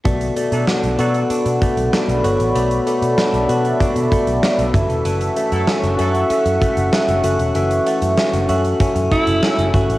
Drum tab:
HH |xxxx-xxxxxxx-xxx|xxxx-xxxxxxx-xxx|xxxx-xxxxxxx-xxx|xxxx-xxxxxxx-xxx|
SD |----o-------o---|----o-------o---|----o-------o---|----o-------o---|
BD |o---------o-----|--------o-o---o-|----------o-----|--------o-o---o-|